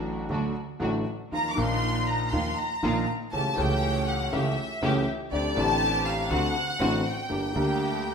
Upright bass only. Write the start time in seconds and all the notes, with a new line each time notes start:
Already playing: A1
0.29 D2
0.80 A1
1.32 D#2
1.57 A#1
2.32 D#2
2.83 A#1
3.33 C#2
3.58 C#2
4.33 C#2
4.81 C#2
5.32 D2
5.57 A1
6.31 D2
6.80 A1
7.30 G1
7.55 D2